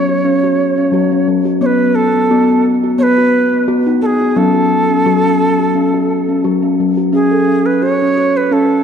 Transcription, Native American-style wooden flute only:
0.00 1.28 C#5 medium
1.61 1.67 C#5 medium
1.66 1.96 B4 medium
1.95 2.64 A4 medium
2.99 3.04 C#5 medium
3.03 3.64 B4 loud
4.02 4.07 A4 medium
4.06 4.39 G#4 medium
4.37 6.44 A4 loud
7.14 7.67 G#4 medium
7.66 7.84 B4 medium
7.82 8.38 C#5 medium
8.37 8.54 B4 medium
8.53 8.84 A4 medium

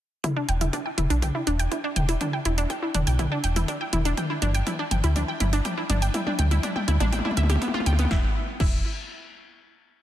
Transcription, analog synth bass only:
0.49 0.69 E1 medium
0.98 1.08 E1 medium
1.10 1.31 B1 medium
1.47 1.68 E1 medium
1.96 2.17 E1 loud
2.45 2.66 E1 medium
2.95 3.05 E1 medium
3.07 3.28 B1 medium
3.44 3.64 E1 medium
3.93 4.14 E1 loud
4.42 4.63 G1 loud
4.91 5.02 G1 medium
5.04 5.24 D2 medium
5.40 5.61 G1 medium
5.90 6.10 G1 loud
6.39 6.59 D2 loud
6.88 6.98 D2 medium
7.00 7.21 A1 medium
7.37 7.58 D2 medium
7.86 8.07 D2 medium
8.11 8.25 E1 loud
8.60 8.83 E1 loud

